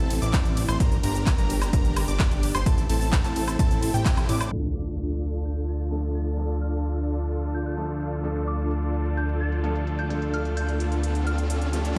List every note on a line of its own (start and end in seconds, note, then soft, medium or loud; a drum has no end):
0.00 0.20 A1 loud
0.00 0.19 C4 loud
0.00 0.19 E4 medium
0.00 0.19 A4 loud
0.00 0.19 A5 loud
0.10 open hi-hat loud
0.10 ride medium
0.22 0.66 A1 loud
0.22 0.66 C4 medium
0.22 0.66 E4 medium
0.22 0.66 D5 medium
0.22 0.66 D6 loud
0.22 closed hi-hat soft
0.22 cabasa medium
0.33 kick loud
0.33 clap loud
0.33 closed hi-hat loud
0.33 ride medium
0.33 cabasa medium
0.45 closed hi-hat soft
0.45 cabasa soft
0.57 open hi-hat loud
0.57 ride medium
0.68 0.78 A1 medium
0.68 0.77 C4 medium
0.68 0.77 E4 medium
0.68 0.77 C5 loud
0.68 0.77 C6 loud
0.68 closed hi-hat soft
0.68 cabasa medium
0.68 high woodblock medium
0.80 1.01 G1 loud
0.80 0.97 D4 medium
0.80 0.97 G4 medium
0.80 0.97 A#4 loud
0.80 0.97 A#5 loud
0.80 kick loud
0.80 closed hi-hat medium
0.80 ride medium
0.80 cabasa medium
0.92 closed hi-hat soft
0.92 cabasa soft
1.03 1.36 G1 medium
1.03 1.30 D4 medium
1.03 1.30 G4 medium
1.03 1.30 A#4 loud
1.03 1.30 A#5 medium
1.03 open hi-hat loud
1.03 ride medium
1.15 closed hi-hat soft
1.15 cabasa medium
1.26 kick loud
1.26 clap loud
1.26 closed hi-hat loud
1.26 ride medium
1.26 cabasa medium
1.38 1.71 G1 loud
1.38 1.70 D4 medium
1.38 1.70 G4 medium
1.38 1.70 A#4 medium
1.38 1.70 A#5 loud
1.38 closed hi-hat soft
1.38 cabasa soft
1.50 open hi-hat loud
1.50 ride medium
1.62 closed hi-hat soft
1.62 cabasa medium
1.62 high woodblock medium
1.73 2.06 G1 loud
1.73 2.05 D4 loud
1.73 2.05 G4 medium
1.73 2.05 A#4 loud
1.73 2.05 A#5 loud
1.73 kick loud
1.73 closed hi-hat loud
1.73 ride medium
1.73 cabasa medium
1.85 closed hi-hat soft
1.85 cabasa soft
1.96 open hi-hat loud
1.96 ride medium
1.96 high woodblock medium
2.08 2.52 G1 medium
2.08 2.52 D4 medium
2.08 2.52 G4 medium
2.08 2.52 D5 medium
2.08 2.52 D6 loud
2.08 closed hi-hat soft
2.08 cabasa medium
2.20 kick loud
2.20 clap loud
2.20 closed hi-hat loud
2.20 ride medium
2.20 cabasa medium
2.31 closed hi-hat soft
2.31 cabasa soft
2.43 open hi-hat loud
2.43 ride medium
2.55 2.64 G1 loud
2.55 2.63 D4 medium
2.55 2.63 G4 medium
2.55 2.63 C5 loud
2.55 2.63 C6 loud
2.55 closed hi-hat soft
2.55 cabasa medium
2.55 high woodblock medium
2.66 2.87 A1 loud
2.66 2.83 C4 medium
2.66 2.83 E4 medium
2.66 2.83 A4 loud
2.66 2.83 A5 loud
2.66 kick loud
2.66 closed hi-hat loud
2.66 ride medium
2.66 cabasa medium
2.78 closed hi-hat soft
2.78 cabasa soft
2.89 3.22 A1 loud
2.89 3.16 C4 medium
2.89 3.16 E4 medium
2.89 3.16 A4 loud
2.89 3.16 A5 medium
2.89 open hi-hat loud
2.89 ride medium
3.01 open hi-hat medium
3.01 cabasa medium
3.13 kick loud
3.13 clap loud
3.13 closed hi-hat loud
3.13 ride medium
3.13 cabasa medium
3.24 3.57 A1 loud
3.24 3.56 C4 medium
3.24 3.56 E4 medium
3.24 3.56 A4 medium
3.24 3.56 A5 loud
3.24 clap soft
3.24 closed hi-hat soft
3.24 cabasa soft
3.36 open hi-hat loud
3.36 ride medium
3.48 closed hi-hat soft
3.48 cabasa medium
3.48 high woodblock medium
3.59 3.92 A1 loud
3.59 3.91 C4 loud
3.59 3.91 E4 medium
3.59 3.91 A4 loud
3.59 3.91 A5 loud
3.59 kick loud
3.59 closed hi-hat loud
3.59 ride medium
3.59 cabasa medium
3.71 closed hi-hat soft
3.71 cabasa soft
3.83 open hi-hat loud
3.83 ride medium
3.94 4.27 A2 medium
3.94 4.26 C4 medium
3.94 4.26 E4 medium
3.94 4.26 G4 medium
3.94 4.26 G5 loud
3.94 closed hi-hat soft
3.94 cabasa medium
4.05 kick loud
4.05 clap loud
4.05 closed hi-hat loud
4.05 ride medium
4.05 cabasa medium
4.17 closed hi-hat soft
4.17 cabasa soft
4.17 high woodblock medium
4.29 4.50 A2 loud
4.29 4.50 C4 medium
4.29 4.50 E4 medium
4.29 4.50 D5 medium
4.29 4.49 D6 loud
4.29 open hi-hat loud
4.29 ride medium
4.41 closed hi-hat soft
4.41 cabasa medium
4.41 high woodblock medium
4.51 11.94 D2 medium
4.51 5.88 F3 medium
4.51 5.89 A3 medium
4.51 8.22 D4 medium
4.51 5.89 D4 medium
4.51 11.92 F4 medium
4.51 8.22 F4 medium
4.51 11.92 A4 medium
4.51 8.22 A4 medium
4.51 5.90 A4 medium
4.51 11.92 D5 medium
4.51 11.92 A5 medium
4.51 closed hi-hat medium
4.51 impact medium
4.75 4.89 D6 medium
4.99 closed hi-hat medium
5.10 closed hi-hat soft
5.22 closed hi-hat medium
5.45 5.58 G6 medium
5.45 closed hi-hat medium
5.69 5.82 A6 medium
5.91 6.35 F3 medium
5.91 6.35 A3 medium
5.91 6.36 D4 medium
5.91 6.36 A4 loud
5.91 closed hi-hat medium
6.15 6.28 A6 medium
6.15 closed hi-hat medium
6.27 closed hi-hat soft
6.37 7.74 F3 medium
6.37 7.75 A3 medium
6.37 7.75 D4 medium
6.37 7.76 A4 medium
6.37 closed hi-hat medium
6.50 closed hi-hat soft
6.62 6.75 F6 medium
6.62 closed hi-hat medium
6.73 closed hi-hat soft
6.85 closed hi-hat medium
6.96 closed hi-hat soft
7.08 closed hi-hat medium
7.20 closed hi-hat soft
7.31 closed hi-hat medium
7.43 closed hi-hat soft
7.55 7.64 G6 medium
7.55 closed hi-hat soft
7.66 8.01 G6 medium
7.66 closed hi-hat soft
7.77 8.21 F3 medium
7.77 8.21 A3 medium
7.77 8.22 D4 medium
7.77 8.22 A4 medium
7.77 closed hi-hat medium
7.89 closed hi-hat soft
8.01 closed hi-hat medium
8.13 closed hi-hat soft
8.23 9.60 F3 medium
8.23 9.61 A3 medium
8.23 11.94 D4 medium
8.23 9.61 D4 medium
8.23 11.94 F4 medium
8.23 11.94 A4 medium
8.23 9.62 A4 loud
8.23 closed hi-hat medium
8.23 riser medium
8.36 closed hi-hat soft
8.48 8.61 D6 medium
8.48 closed hi-hat medium
8.59 closed hi-hat soft
8.71 closed hi-hat medium
8.83 closed hi-hat soft
8.94 closed hi-hat medium
9.06 closed hi-hat soft
9.17 9.31 G6 medium
9.17 closed hi-hat medium
9.29 closed hi-hat soft
9.41 9.54 A6 medium
9.52 closed hi-hat soft
9.63 10.07 F3 medium
9.63 10.07 A3 medium
9.63 10.08 D4 medium
9.63 10.08 A4 loud
9.63 closed hi-hat medium
9.76 closed hi-hat soft
9.87 closed hi-hat medium
9.99 10.06 G6 medium
9.99 closed hi-hat soft
10.09 11.47 F3 medium
10.09 11.47 A3 medium
10.09 11.47 D4 medium
10.09 11.48 A4 medium
10.09 10.18 G6 medium
10.09 closed hi-hat medium
10.22 closed hi-hat soft
10.34 10.47 F6 medium
10.34 closed hi-hat medium
10.45 closed hi-hat soft
10.57 10.70 G6 medium
10.57 closed hi-hat medium
10.69 closed hi-hat soft
10.80 closed hi-hat medium
10.92 closed hi-hat soft
11.03 closed hi-hat medium
11.15 closed hi-hat soft
11.27 11.62 F6 medium
11.27 closed hi-hat soft
11.38 closed hi-hat soft
11.50 closed hi-hat medium
11.62 closed hi-hat soft
11.73 11.93 F3 medium
11.73 11.94 A3 medium
11.73 11.94 D4 medium
11.73 11.94 G4 medium
11.73 closed hi-hat medium
11.85 closed hi-hat soft